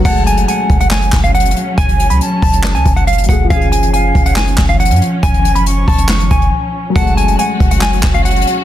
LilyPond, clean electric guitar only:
\new Staff \with { instrumentName = "Clean electric guitar" } { \time 4/4 \key fis \minor \tempo 4 = 139 fis''8 gis''8 gis''8. fis''16 gis''8. eis''16 fis''4 | gis''8. b''16 r8 a''8. gis''8 fis''16 eis''8 fis''8 | eis''8 gis''8 gis''8. fis''16 gis''8. eis''16 fis''4 | gis''8. b''16 r8 a''8 r8 gis''4. |
fis''8 gis''8 gis''8. fis''16 gis''8. eis''16 fis''4 | }